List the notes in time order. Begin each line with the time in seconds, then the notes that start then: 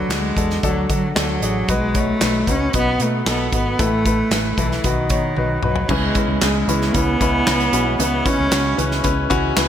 Already playing: D3 F#3 D4 F#4 A4 B4
0.09 D2 G#3 D4 F#4 A4, snare, clap, closed hi-hat
0.36 E2 D4 F#4 A4, kick, closed hi-hat
0.50 snare
0.63 D2 F#3 D4 F#4 A4, kick, closed hi-hat
0.89 D3 F#3 D4 F#4 A4, kick, closed hi-hat
1.16 D2 F#3 D4 F#4 A4, snare, clap, closed hi-hat
1.41 A1 D4 F#4 G#4, closed hi-hat
1.68 B1 B2 G#3 D#4 F#4 B4, kick, closed hi-hat
1.95 D#4 F#4 C#5, kick, closed hi-hat
1.99 A3
2.21 B1 D#4 F#4 B4, snare, clap, closed hi-hat
2.47 C#2 D#4 F#4 B4, kick, closed hi-hat
2.51 C#4
2.73 B1 B3 D#4 F#4 B4, kick, closed hi-hat
3.00 B2 A3 D#4 F#4 B4, closed hi-hat
3.26 B1 B3 D#4 F#4 A4, snare, clap, closed hi-hat
3.52 G#1 B3 D#4 F#4 B4, kick, closed hi-hat
3.79 A1 A2 A3 E4 A4 B4, kick, closed hi-hat
4.06 E4 A4 B4, kick, closed hi-hat
4.31 A1 E4 A4 B4, snare, clap, closed hi-hat
4.58 B1 E3 E4 A4 B4, kick, closed hi-hat
4.72 snare
4.84 B1 B2 D#3 D#4 F#4 B4, kick, closed hi-hat
5.09 B2 D#4 F#4 C#5, kick, closed hi-hat
5.37 B1 D#4 F#4 B4, high tom
5.62 B1 D#4 F#4 B4, mid tom
5.66 F#3
5.76 floor tom
5.88 C#2 C#3 E3 G#3 B3 C#4 E4 B4, kick, crash
6.15 C#4 E4 B4, kick, closed hi-hat
6.27 C#2 G#3 B3 E4
6.41 C#2 G#3 C#4 E4 G#4, snare, clap, closed hi-hat
6.67 C#2 E3 G#3 B3 C#4 E4 B4, closed hi-hat
6.82 snare
6.94 C#2 B3 C#4 E4 B4, kick, closed hi-hat
7.18 C#2 E3 G#3 B3 C#4 E4 B4, kick, closed hi-hat
7.46 C#2 E3 G#3 B3 C#4 E4 B4, snare, clap, closed hi-hat
7.60 closed hi-hat
7.73 B1 C#4 E4 F#4, closed hi-hat
7.85 G#3 B3 E4
7.98 C#2 C#3 E3 G#3 B3 C#4 E4 B4, closed hi-hat
8.25 C#4 E4 B4, kick, closed hi-hat
8.38 C#2 G#3 B3 E4
8.51 C#2 C#4 E4 F#4, snare, clap, closed hi-hat
8.76 C#2 E3 G#3 B3 C#4 E4 B4, closed hi-hat
8.91 snare
9.04 C#2 C#4 E4 B4, kick, closed hi-hat
9.30 C#2 E3 G#3 B3 C#4 E4 F#4, kick, closed hi-hat
9.55 C#2 E3 G#3 B3 C#4 E4 B4, snare, clap, closed hi-hat